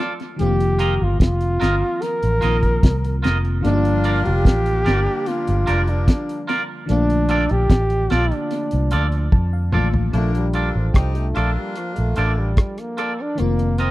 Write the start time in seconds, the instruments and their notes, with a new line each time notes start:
Already playing: fm electric piano D3 F3 A3 A#3 F4, clean electric guitar F4
0.00 clean electric guitar A4 D5
0.20 closed hi-hat
0.36 fm electric piano D#3 F3 A3, trombone G4, closed hi-hat
0.41 fingered electric bass F1, fm electric piano C4 F4
0.46 fm electric piano A#3
0.60 closed hi-hat
0.79 clean electric guitar F4 A#4 D#5, closed hi-hat
1.02 fingered electric bass G1, trombone F4
1.20 fingered electric bass F1, trombone F4, kick, snare, closed hi-hat
1.41 closed hi-hat
1.60 fingered electric bass G1, clean electric guitar F4 A#4 D#5, snare, closed hi-hat
1.81 muted clean electric guitar stroke
2.02 trombone A#4, closed hi-hat
2.23 fingered electric bass A1, closed hi-hat
2.41 fingered electric bass A#1, fm electric piano D#3 F3 A#3 C4 F4, clean electric guitar F4 A#4 D#5, closed hi-hat
2.63 kick, closed hi-hat
2.83 fingered electric bass C2, kick, snare, closed hi-hat
3.05 closed hi-hat
3.22 fingered electric bass F1, clean electric guitar F4 A#4 D#5, snare, closed hi-hat
3.45 closed hi-hat
3.61 fm electric piano D3 F3 G3, saxophone section A#3 D4 F4, trombone D4, closed hi-hat
3.65 fingered electric bass G1, fm electric piano A#3 D#4
3.74 fm electric piano F4
3.85 closed hi-hat
4.04 clean electric guitar F4 A#4 D5, closed hi-hat
4.25 fingered electric bass F1, trombone G4, closed hi-hat
4.45 fingered electric bass A1, kick, snare, closed hi-hat
4.66 closed hi-hat
4.84 fingered electric bass G1, saxophone section G3 A#3 D4, clean electric guitar F4 A#4 D5, snare, closed hi-hat
5.06 muted clean electric guitar stroke
5.26 trombone F4, closed hi-hat
5.47 fingered electric bass G1, closed hi-hat
5.66 fingered electric bass F1, saxophone section G3 A#3 D4, clean electric guitar F4 A#4 D5, closed hi-hat
5.87 trombone D4, closed hi-hat
6.08 kick, snare, closed hi-hat
6.29 closed hi-hat
6.47 clean electric guitar F4 A#4 D5, closed hi-hat
6.86 fingered electric bass A#1, fm electric piano D3 F3 A3, closed hi-hat
6.90 fm electric piano A#3 F4, trombone D4
7.10 closed hi-hat
7.29 clean electric guitar F4 A4 D5, closed hi-hat
7.49 fingered electric bass A#1, trombone G4, closed hi-hat
7.70 fingered electric bass A1, kick, snare, closed hi-hat
7.90 closed hi-hat
8.10 fingered electric bass A#1, clean electric guitar F4 A4 D5, trombone F4, snare, closed hi-hat
8.31 trombone D4, muted clean electric guitar stroke, closed hi-hat
8.51 closed hi-hat
8.71 fingered electric bass C2, closed hi-hat
8.91 fingered electric bass D2, clean electric guitar F4 A4 D5, closed hi-hat
9.12 closed hi-hat
9.32 fingered electric bass F2, fm electric piano A5, kick, high tom
9.53 fm electric piano F5
9.72 fingered electric bass A1, fm electric piano D3 F3 A3 A#3 F4, clean electric guitar F4 A4 D5, mid tom
9.94 floor tom
10.11 fingered electric bass A#1, fm electric piano C3 F3 A4, saxophone section D3 A#3 D4, trombone A3, closed hi-hat
10.17 fm electric piano D4 F4
10.35 trombone G3, closed hi-hat
10.53 saxophone section A#3 D4 F4, clean electric guitar F4 A4 D5, closed hi-hat
10.75 fingered electric bass A1, trombone F3
10.93 fingered electric bass C2, saxophone section C4 D#4 G4, kick, cross-stick, closed hi-hat
11.15 trombone A3, closed hi-hat
11.34 fingered electric bass A#1, saxophone section A#3 D4 F4, clean electric guitar F4 A4 D5, cross-stick, closed hi-hat
11.56 trombone G3, muted clean electric guitar stroke
11.76 trombone F3, closed hi-hat
11.96 fingered electric bass A#1, trombone A3, closed hi-hat
12.16 fingered electric bass A1, saxophone section D3 A#3 D4, clean electric guitar F4 A4 D5, closed hi-hat
12.39 trombone G3
12.57 kick, cross-stick, closed hi-hat
12.78 trombone A#3, cross-stick, closed hi-hat
12.97 clean electric guitar F4 A4 D5, closed hi-hat
13.21 trombone D4
13.35 fm electric piano D#3 A#3 C4, closed hi-hat
13.40 fingered electric bass F1, trombone A#3, fm electric piano F4
13.59 closed hi-hat
13.78 trombone C4, clean electric guitar F4 A#4 D#5, closed hi-hat